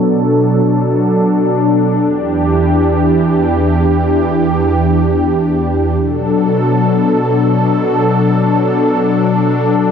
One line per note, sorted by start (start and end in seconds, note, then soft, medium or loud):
0.00 1.99 B2 medium
0.00 1.99 F#3 medium
0.00 5.96 D4 medium
0.00 1.99 A4 medium
2.03 5.96 E2 medium
2.03 5.96 E3 medium
2.03 5.96 G4 medium
6.00 9.92 B2 medium
6.00 9.92 F#3 medium
6.00 9.92 D4 medium
6.00 9.92 A4 medium